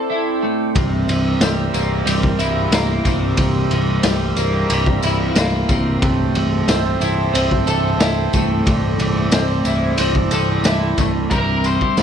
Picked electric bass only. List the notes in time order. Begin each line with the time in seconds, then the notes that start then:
0.75 C1
1.08 C1
1.40 C1
1.74 C1
2.06 C1
2.39 C1
2.71 C1
3.05 C1
3.38 C1
3.71 C1
4.05 C1
4.36 C1
4.69 C1
5.03 C1
5.36 C1
5.69 C1
6.02 C1
6.35 C1
6.68 C1
7.00 C1
7.33 C1
7.66 C1
7.98 C1
8.34 C1
8.66 C1
8.98 C1
9.31 C1
9.65 C1
9.98 C1
10.31 C1
10.63 C1
10.97 C1
11.31 C1
11.97 C1